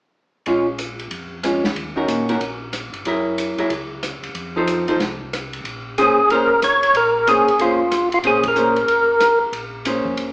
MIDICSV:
0, 0, Header, 1, 5, 480
1, 0, Start_track
1, 0, Key_signature, -5, "minor"
1, 0, Tempo, 323799
1, 683, Time_signature, 4, 2, 24, 8
1, 15309, End_track
2, 0, Start_track
2, 0, Title_t, "Tonewheel organ"
2, 0, Program_c, 0, 16
2, 8865, Note_on_c, 0, 68, 88
2, 9349, Note_off_c, 0, 68, 0
2, 9356, Note_on_c, 0, 70, 81
2, 9788, Note_off_c, 0, 70, 0
2, 9843, Note_on_c, 0, 73, 91
2, 10318, Note_off_c, 0, 73, 0
2, 10328, Note_on_c, 0, 70, 89
2, 10800, Note_off_c, 0, 70, 0
2, 10800, Note_on_c, 0, 68, 84
2, 11276, Note_off_c, 0, 68, 0
2, 11286, Note_on_c, 0, 65, 72
2, 11995, Note_off_c, 0, 65, 0
2, 12067, Note_on_c, 0, 65, 69
2, 12137, Note_off_c, 0, 65, 0
2, 12259, Note_on_c, 0, 68, 83
2, 12515, Note_off_c, 0, 68, 0
2, 12569, Note_on_c, 0, 70, 80
2, 13916, Note_off_c, 0, 70, 0
2, 15309, End_track
3, 0, Start_track
3, 0, Title_t, "Hollow-body jazz guitar"
3, 0, Program_c, 1, 26
3, 690, Note_on_c, 1, 56, 51
3, 693, Note_on_c, 1, 61, 53
3, 708, Note_on_c, 1, 65, 56
3, 961, Note_off_c, 1, 56, 0
3, 962, Note_off_c, 1, 61, 0
3, 969, Note_off_c, 1, 65, 0
3, 2129, Note_on_c, 1, 56, 41
3, 2143, Note_on_c, 1, 61, 45
3, 2149, Note_on_c, 1, 65, 49
3, 2401, Note_off_c, 1, 56, 0
3, 2408, Note_off_c, 1, 61, 0
3, 2411, Note_off_c, 1, 65, 0
3, 2903, Note_on_c, 1, 51, 52
3, 2917, Note_on_c, 1, 61, 61
3, 2919, Note_on_c, 1, 66, 63
3, 2924, Note_on_c, 1, 70, 59
3, 3356, Note_off_c, 1, 51, 0
3, 3363, Note_off_c, 1, 61, 0
3, 3364, Note_off_c, 1, 66, 0
3, 3367, Note_off_c, 1, 70, 0
3, 3390, Note_on_c, 1, 51, 42
3, 3400, Note_on_c, 1, 61, 46
3, 3406, Note_on_c, 1, 66, 48
3, 3406, Note_on_c, 1, 70, 56
3, 3549, Note_off_c, 1, 51, 0
3, 3554, Note_off_c, 1, 61, 0
3, 3557, Note_off_c, 1, 66, 0
3, 3557, Note_off_c, 1, 70, 0
3, 4540, Note_on_c, 1, 54, 52
3, 4545, Note_on_c, 1, 68, 54
3, 4548, Note_on_c, 1, 64, 58
3, 4561, Note_on_c, 1, 70, 64
3, 5257, Note_off_c, 1, 54, 0
3, 5259, Note_off_c, 1, 68, 0
3, 5261, Note_off_c, 1, 64, 0
3, 5267, Note_off_c, 1, 70, 0
3, 5314, Note_on_c, 1, 54, 54
3, 5316, Note_on_c, 1, 64, 47
3, 5324, Note_on_c, 1, 68, 62
3, 5332, Note_on_c, 1, 70, 54
3, 5471, Note_off_c, 1, 54, 0
3, 5472, Note_off_c, 1, 64, 0
3, 5476, Note_off_c, 1, 68, 0
3, 5480, Note_off_c, 1, 70, 0
3, 6759, Note_on_c, 1, 53, 57
3, 6767, Note_on_c, 1, 63, 60
3, 6777, Note_on_c, 1, 69, 64
3, 6784, Note_on_c, 1, 72, 58
3, 7205, Note_off_c, 1, 53, 0
3, 7209, Note_off_c, 1, 63, 0
3, 7214, Note_off_c, 1, 69, 0
3, 7217, Note_off_c, 1, 72, 0
3, 7230, Note_on_c, 1, 53, 52
3, 7237, Note_on_c, 1, 63, 52
3, 7245, Note_on_c, 1, 72, 59
3, 7250, Note_on_c, 1, 69, 52
3, 7389, Note_off_c, 1, 53, 0
3, 7392, Note_off_c, 1, 63, 0
3, 7397, Note_off_c, 1, 72, 0
3, 7399, Note_off_c, 1, 69, 0
3, 8864, Note_on_c, 1, 58, 52
3, 8877, Note_on_c, 1, 61, 58
3, 8880, Note_on_c, 1, 68, 54
3, 8884, Note_on_c, 1, 72, 57
3, 9128, Note_off_c, 1, 58, 0
3, 9135, Note_off_c, 1, 61, 0
3, 9136, Note_off_c, 1, 68, 0
3, 9139, Note_off_c, 1, 72, 0
3, 9355, Note_on_c, 1, 58, 46
3, 9361, Note_on_c, 1, 61, 54
3, 9364, Note_on_c, 1, 68, 54
3, 9376, Note_on_c, 1, 72, 55
3, 9614, Note_off_c, 1, 58, 0
3, 9616, Note_off_c, 1, 61, 0
3, 9618, Note_off_c, 1, 68, 0
3, 9624, Note_off_c, 1, 72, 0
3, 10776, Note_on_c, 1, 58, 52
3, 10779, Note_on_c, 1, 61, 58
3, 10783, Note_on_c, 1, 68, 58
3, 10786, Note_on_c, 1, 72, 51
3, 11043, Note_off_c, 1, 58, 0
3, 11045, Note_off_c, 1, 61, 0
3, 11047, Note_off_c, 1, 68, 0
3, 11048, Note_off_c, 1, 72, 0
3, 11264, Note_on_c, 1, 58, 53
3, 11276, Note_on_c, 1, 61, 47
3, 11276, Note_on_c, 1, 68, 51
3, 11285, Note_on_c, 1, 72, 49
3, 11527, Note_off_c, 1, 58, 0
3, 11533, Note_off_c, 1, 61, 0
3, 11533, Note_off_c, 1, 68, 0
3, 11538, Note_off_c, 1, 72, 0
3, 12214, Note_on_c, 1, 58, 46
3, 12218, Note_on_c, 1, 68, 48
3, 12222, Note_on_c, 1, 61, 51
3, 12225, Note_on_c, 1, 72, 52
3, 12481, Note_off_c, 1, 58, 0
3, 12484, Note_off_c, 1, 68, 0
3, 12486, Note_off_c, 1, 61, 0
3, 12487, Note_off_c, 1, 72, 0
3, 12681, Note_on_c, 1, 58, 49
3, 12692, Note_on_c, 1, 61, 44
3, 12699, Note_on_c, 1, 68, 47
3, 12700, Note_on_c, 1, 72, 48
3, 12955, Note_off_c, 1, 58, 0
3, 12960, Note_off_c, 1, 61, 0
3, 12964, Note_off_c, 1, 68, 0
3, 12964, Note_off_c, 1, 72, 0
3, 14614, Note_on_c, 1, 58, 45
3, 14621, Note_on_c, 1, 61, 47
3, 14627, Note_on_c, 1, 72, 46
3, 14628, Note_on_c, 1, 68, 46
3, 15309, Note_off_c, 1, 58, 0
3, 15309, Note_off_c, 1, 61, 0
3, 15309, Note_off_c, 1, 68, 0
3, 15309, Note_off_c, 1, 72, 0
3, 15309, End_track
4, 0, Start_track
4, 0, Title_t, "Tonewheel organ"
4, 0, Program_c, 2, 16
4, 688, Note_on_c, 2, 34, 72
4, 1599, Note_off_c, 2, 34, 0
4, 1645, Note_on_c, 2, 41, 66
4, 2558, Note_off_c, 2, 41, 0
4, 2601, Note_on_c, 2, 39, 69
4, 3050, Note_off_c, 2, 39, 0
4, 3076, Note_on_c, 2, 46, 66
4, 3527, Note_off_c, 2, 46, 0
4, 3568, Note_on_c, 2, 34, 74
4, 4297, Note_off_c, 2, 34, 0
4, 4338, Note_on_c, 2, 31, 63
4, 4508, Note_off_c, 2, 31, 0
4, 4529, Note_on_c, 2, 30, 75
4, 5257, Note_off_c, 2, 30, 0
4, 5299, Note_on_c, 2, 30, 37
4, 5390, Note_off_c, 2, 30, 0
4, 5482, Note_on_c, 2, 37, 79
4, 6213, Note_off_c, 2, 37, 0
4, 6268, Note_on_c, 2, 37, 36
4, 6357, Note_off_c, 2, 37, 0
4, 6441, Note_on_c, 2, 41, 80
4, 7356, Note_off_c, 2, 41, 0
4, 7403, Note_on_c, 2, 36, 73
4, 8316, Note_off_c, 2, 36, 0
4, 8364, Note_on_c, 2, 34, 82
4, 9093, Note_off_c, 2, 34, 0
4, 9159, Note_on_c, 2, 34, 34
4, 9245, Note_off_c, 2, 34, 0
4, 9329, Note_on_c, 2, 29, 73
4, 10239, Note_off_c, 2, 29, 0
4, 10280, Note_on_c, 2, 34, 83
4, 11011, Note_off_c, 2, 34, 0
4, 11064, Note_on_c, 2, 34, 35
4, 11153, Note_off_c, 2, 34, 0
4, 11251, Note_on_c, 2, 29, 77
4, 12159, Note_off_c, 2, 29, 0
4, 12195, Note_on_c, 2, 34, 79
4, 13110, Note_off_c, 2, 34, 0
4, 13163, Note_on_c, 2, 29, 86
4, 13890, Note_off_c, 2, 29, 0
4, 13940, Note_on_c, 2, 29, 33
4, 14029, Note_off_c, 2, 29, 0
4, 14117, Note_on_c, 2, 34, 72
4, 14847, Note_off_c, 2, 34, 0
4, 14896, Note_on_c, 2, 41, 59
4, 15063, Note_off_c, 2, 41, 0
4, 15068, Note_on_c, 2, 29, 73
4, 15309, Note_off_c, 2, 29, 0
4, 15309, End_track
5, 0, Start_track
5, 0, Title_t, "Drums"
5, 680, Note_on_c, 9, 51, 41
5, 828, Note_off_c, 9, 51, 0
5, 1163, Note_on_c, 9, 44, 48
5, 1163, Note_on_c, 9, 51, 52
5, 1311, Note_off_c, 9, 44, 0
5, 1311, Note_off_c, 9, 51, 0
5, 1473, Note_on_c, 9, 51, 33
5, 1621, Note_off_c, 9, 51, 0
5, 1642, Note_on_c, 9, 51, 43
5, 1790, Note_off_c, 9, 51, 0
5, 2127, Note_on_c, 9, 37, 49
5, 2127, Note_on_c, 9, 44, 48
5, 2127, Note_on_c, 9, 51, 58
5, 2275, Note_off_c, 9, 37, 0
5, 2275, Note_off_c, 9, 44, 0
5, 2275, Note_off_c, 9, 51, 0
5, 2432, Note_on_c, 9, 38, 40
5, 2580, Note_off_c, 9, 38, 0
5, 2610, Note_on_c, 9, 51, 44
5, 2758, Note_off_c, 9, 51, 0
5, 3087, Note_on_c, 9, 44, 52
5, 3087, Note_on_c, 9, 51, 50
5, 3235, Note_off_c, 9, 44, 0
5, 3235, Note_off_c, 9, 51, 0
5, 3393, Note_on_c, 9, 51, 36
5, 3541, Note_off_c, 9, 51, 0
5, 3568, Note_on_c, 9, 51, 43
5, 3716, Note_off_c, 9, 51, 0
5, 4045, Note_on_c, 9, 37, 46
5, 4045, Note_on_c, 9, 44, 49
5, 4045, Note_on_c, 9, 51, 50
5, 4193, Note_off_c, 9, 37, 0
5, 4193, Note_off_c, 9, 44, 0
5, 4193, Note_off_c, 9, 51, 0
5, 4350, Note_on_c, 9, 51, 35
5, 4498, Note_off_c, 9, 51, 0
5, 4524, Note_on_c, 9, 51, 43
5, 4672, Note_off_c, 9, 51, 0
5, 5011, Note_on_c, 9, 44, 45
5, 5011, Note_on_c, 9, 51, 57
5, 5159, Note_off_c, 9, 44, 0
5, 5159, Note_off_c, 9, 51, 0
5, 5311, Note_on_c, 9, 51, 37
5, 5459, Note_off_c, 9, 51, 0
5, 5485, Note_on_c, 9, 51, 44
5, 5633, Note_off_c, 9, 51, 0
5, 5972, Note_on_c, 9, 37, 52
5, 5972, Note_on_c, 9, 44, 49
5, 5972, Note_on_c, 9, 51, 53
5, 6120, Note_off_c, 9, 37, 0
5, 6120, Note_off_c, 9, 44, 0
5, 6120, Note_off_c, 9, 51, 0
5, 6276, Note_on_c, 9, 51, 38
5, 6424, Note_off_c, 9, 51, 0
5, 6444, Note_on_c, 9, 51, 48
5, 6592, Note_off_c, 9, 51, 0
5, 6928, Note_on_c, 9, 44, 54
5, 6928, Note_on_c, 9, 51, 53
5, 7077, Note_off_c, 9, 44, 0
5, 7077, Note_off_c, 9, 51, 0
5, 7232, Note_on_c, 9, 51, 37
5, 7380, Note_off_c, 9, 51, 0
5, 7414, Note_on_c, 9, 38, 30
5, 7414, Note_on_c, 9, 51, 39
5, 7562, Note_off_c, 9, 38, 0
5, 7562, Note_off_c, 9, 51, 0
5, 7717, Note_on_c, 9, 36, 37
5, 7866, Note_off_c, 9, 36, 0
5, 7906, Note_on_c, 9, 37, 53
5, 7906, Note_on_c, 9, 44, 42
5, 7906, Note_on_c, 9, 51, 52
5, 8054, Note_off_c, 9, 37, 0
5, 8054, Note_off_c, 9, 44, 0
5, 8054, Note_off_c, 9, 51, 0
5, 8201, Note_on_c, 9, 51, 35
5, 8349, Note_off_c, 9, 51, 0
5, 8375, Note_on_c, 9, 51, 46
5, 8523, Note_off_c, 9, 51, 0
5, 8863, Note_on_c, 9, 44, 51
5, 8863, Note_on_c, 9, 51, 51
5, 9011, Note_off_c, 9, 44, 0
5, 9011, Note_off_c, 9, 51, 0
5, 9341, Note_on_c, 9, 51, 44
5, 9489, Note_off_c, 9, 51, 0
5, 9816, Note_on_c, 9, 37, 50
5, 9816, Note_on_c, 9, 44, 54
5, 9816, Note_on_c, 9, 51, 56
5, 9964, Note_off_c, 9, 37, 0
5, 9964, Note_off_c, 9, 44, 0
5, 9964, Note_off_c, 9, 51, 0
5, 10123, Note_on_c, 9, 51, 43
5, 10271, Note_off_c, 9, 51, 0
5, 10296, Note_on_c, 9, 51, 49
5, 10444, Note_off_c, 9, 51, 0
5, 10782, Note_on_c, 9, 44, 55
5, 10782, Note_on_c, 9, 51, 55
5, 10930, Note_off_c, 9, 44, 0
5, 10930, Note_off_c, 9, 51, 0
5, 11091, Note_on_c, 9, 51, 38
5, 11239, Note_off_c, 9, 51, 0
5, 11255, Note_on_c, 9, 51, 47
5, 11404, Note_off_c, 9, 51, 0
5, 11734, Note_on_c, 9, 37, 52
5, 11734, Note_on_c, 9, 44, 51
5, 11734, Note_on_c, 9, 51, 58
5, 11882, Note_off_c, 9, 37, 0
5, 11882, Note_off_c, 9, 44, 0
5, 11882, Note_off_c, 9, 51, 0
5, 12038, Note_on_c, 9, 51, 39
5, 12186, Note_off_c, 9, 51, 0
5, 12208, Note_on_c, 9, 51, 49
5, 12356, Note_off_c, 9, 51, 0
5, 12503, Note_on_c, 9, 51, 59
5, 12507, Note_on_c, 9, 36, 67
5, 12651, Note_off_c, 9, 51, 0
5, 12655, Note_off_c, 9, 36, 0
5, 12682, Note_on_c, 9, 44, 53
5, 12830, Note_off_c, 9, 44, 0
5, 12989, Note_on_c, 9, 51, 40
5, 13138, Note_off_c, 9, 51, 0
5, 13166, Note_on_c, 9, 51, 45
5, 13314, Note_off_c, 9, 51, 0
5, 13643, Note_on_c, 9, 37, 57
5, 13643, Note_on_c, 9, 44, 58
5, 13643, Note_on_c, 9, 51, 56
5, 13791, Note_off_c, 9, 37, 0
5, 13791, Note_off_c, 9, 44, 0
5, 13791, Note_off_c, 9, 51, 0
5, 14126, Note_on_c, 9, 51, 51
5, 14274, Note_off_c, 9, 51, 0
5, 14605, Note_on_c, 9, 44, 42
5, 14605, Note_on_c, 9, 51, 62
5, 14753, Note_off_c, 9, 44, 0
5, 14753, Note_off_c, 9, 51, 0
5, 14902, Note_on_c, 9, 36, 50
5, 15051, Note_off_c, 9, 36, 0
5, 15080, Note_on_c, 9, 51, 48
5, 15229, Note_off_c, 9, 51, 0
5, 15309, End_track
0, 0, End_of_file